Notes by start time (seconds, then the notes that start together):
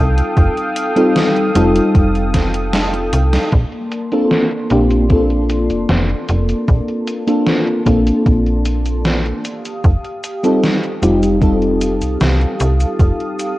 Already playing: C2 G3 C4 D#4 F4 A4 F5 G5 D#6
0.18 closed hi-hat
0.37 F1, kick, closed hi-hat
0.57 closed hi-hat
0.76 closed hi-hat
0.96 G3 C4 D#4 F4 A4, closed hi-hat
1.16 snare, closed hi-hat
1.36 closed hi-hat
1.54 F1 G3 C4 D#4 F4 A4, closed hi-hat
1.75 closed hi-hat
1.95 F1, kick, closed hi-hat
2.15 closed hi-hat
2.34 kick, snare, closed hi-hat
2.54 closed hi-hat
2.73 snare, closed hi-hat
2.94 closed hi-hat
3.13 C2, closed hi-hat
3.33 snare, closed hi-hat
3.52 A#1 A#3 D5 A5 C6, kick, closed hi-hat, cabasa
3.72 closed hi-hat
3.92 closed hi-hat, cabasa
4.12 A#3 C4 D4 F4 A4, closed hi-hat, cabasa
4.31 snare, closed hi-hat, cabasa
4.51 closed hi-hat
4.70 A#1 A#3 C4 D4 F4 G4, closed hi-hat, cabasa
4.91 closed hi-hat, cabasa
5.09 A#3 C4 D4 F4 A4, kick, closed hi-hat, cabasa
5.30 closed hi-hat
5.50 closed hi-hat, cabasa
5.70 F1, closed hi-hat, cabasa
5.89 F1, snare, closed hi-hat, cabasa
6.09 closed hi-hat
6.28 F1, closed hi-hat, cabasa
6.49 closed hi-hat, cabasa
6.68 A#1, kick, closed hi-hat, cabasa
6.88 closed hi-hat
7.07 closed hi-hat, cabasa
7.27 A#3 C4 D4 F4 A4, closed hi-hat, cabasa
7.47 snare, closed hi-hat, cabasa
7.67 closed hi-hat
7.85 A#1 A#3 C4 D4 F4 A4, kick, closed hi-hat, cabasa
8.07 closed hi-hat, cabasa
8.26 A#1, kick, closed hi-hat, cabasa
8.46 closed hi-hat
8.65 closed hi-hat, cabasa
8.86 closed hi-hat, cabasa
9.05 snare, closed hi-hat, cabasa
9.26 closed hi-hat
9.44 G4 F5 A5 D#6, closed hi-hat, cabasa
9.65 closed hi-hat, cabasa
9.84 F1, kick, closed hi-hat, cabasa
10.04 closed hi-hat
10.24 closed hi-hat, cabasa
10.43 G3 C4 D#4 F4 A4, closed hi-hat, cabasa
10.64 snare, closed hi-hat, cabasa
10.84 closed hi-hat
11.02 F1 G3 C4 D#4 F4 G4, closed hi-hat, cabasa
11.23 closed hi-hat, cabasa
11.41 G3 C4 D#4 F4 A4, kick, closed hi-hat, cabasa
11.62 closed hi-hat
11.82 closed hi-hat, cabasa
12.02 C2, closed hi-hat, cabasa
12.21 C2, snare, closed hi-hat, cabasa
12.41 closed hi-hat
12.60 C2, closed hi-hat, cabasa
12.81 closed hi-hat, cabasa
13.00 F1, kick, closed hi-hat, cabasa
13.20 closed hi-hat
13.39 closed hi-hat, cabasa